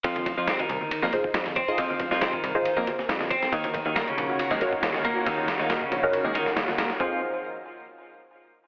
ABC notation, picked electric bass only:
X:1
M:4/4
L:1/16
Q:1/4=138
K:Fphr
V:1 name="Picked electric bass" clef=bass
F,,2 z F,,2 z C,, z2 F,, z2 F,,2 z2 | F,,2 z F,,2 z C,, z2 F,, z2 F,,2 z2 | E,,2 z E,,2 z B,,, z2 E,, z2 E,,2 z2 | E,,2 z E,,2 z B,,, z2 E,, z2 E,,2 z2 |
F,,2 z12 z2 |]